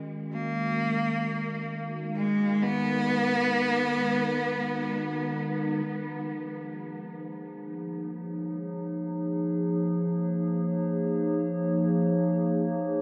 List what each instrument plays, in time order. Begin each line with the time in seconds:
Already playing: ambient pad D#3 G#3 C#4 F#4 A#4
0.33 cello A#3
1.56 ambient pad D#4
2.16 cello G#3
2.63 cello B3
5.83 ambient pad F3
6.05 ambient pad G#4
6.28 ambient pad A#3
7.99 ambient pad C#5